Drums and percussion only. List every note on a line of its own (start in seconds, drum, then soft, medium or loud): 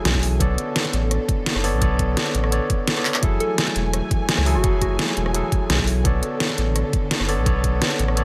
0.05 snare loud
0.05 closed hi-hat medium
0.14 kick medium
0.23 open hi-hat medium
0.40 kick loud
0.40 closed hi-hat loud
0.58 closed hi-hat medium
0.76 snare loud
0.76 closed hi-hat medium
0.85 snare soft
0.85 closed hi-hat soft
0.93 closed hi-hat medium
1.11 cross-stick soft
1.11 closed hi-hat medium
1.29 kick loud
1.29 closed hi-hat medium
1.46 snare loud
1.46 closed hi-hat medium
1.55 cross-stick soft
1.64 open hi-hat medium
1.82 kick loud
1.82 closed hi-hat medium
1.99 kick medium
1.99 closed hi-hat medium
2.17 snare loud
2.17 closed hi-hat loud
2.26 closed hi-hat soft
2.35 closed hi-hat medium
2.44 cross-stick medium
2.52 closed hi-hat medium
2.70 kick loud
2.70 closed hi-hat medium
2.88 snare loud
2.88 closed hi-hat medium
2.97 closed hi-hat soft
3.05 clap medium
3.05 open hi-hat medium
3.14 clap loud
3.23 kick loud
3.23 closed hi-hat medium
3.40 closed hi-hat medium
3.58 snare loud
3.58 closed hi-hat loud
3.67 snare soft
3.67 closed hi-hat soft
3.76 closed hi-hat medium
3.93 cross-stick soft
3.93 closed hi-hat medium
4.11 kick loud
4.11 closed hi-hat medium
4.29 snare loud
4.29 closed hi-hat medium
4.38 cross-stick soft
4.46 open hi-hat medium
4.64 kick loud
4.64 closed hi-hat medium
4.82 kick medium
4.82 closed hi-hat medium
4.99 snare loud
4.99 closed hi-hat medium
5.08 closed hi-hat soft
5.17 closed hi-hat medium
5.26 cross-stick medium
5.34 closed hi-hat medium
5.52 kick loud
5.52 closed hi-hat medium
5.70 snare loud
5.70 closed hi-hat medium
5.79 kick medium
5.87 open hi-hat medium
6.05 kick loud
6.05 closed hi-hat medium
6.23 closed hi-hat medium
6.40 snare loud
6.40 closed hi-hat medium
6.49 snare soft
6.49 closed hi-hat soft
6.58 closed hi-hat medium
6.76 cross-stick soft
6.76 closed hi-hat medium
6.93 kick loud
6.93 closed hi-hat medium
7.11 snare loud
7.11 closed hi-hat medium
7.20 cross-stick soft
7.29 open hi-hat medium
7.46 kick loud
7.46 closed hi-hat medium
7.64 kick medium
7.64 closed hi-hat medium
7.82 snare loud
7.82 closed hi-hat medium
7.91 closed hi-hat soft
7.99 closed hi-hat medium
8.08 cross-stick medium
8.17 closed hi-hat medium